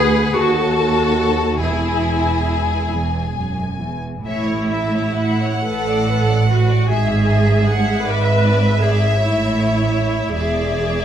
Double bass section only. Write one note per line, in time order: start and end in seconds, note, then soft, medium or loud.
0.00 0.33 D2 medium
0.37 1.57 D#2 medium
1.59 4.02 E1 medium
4.24 5.48 A1 medium
5.65 6.74 A1 medium
6.87 7.90 G#1 medium
8.05 9.07 G#1 medium
9.21 10.31 A1 medium
10.34 11.05 E1 soft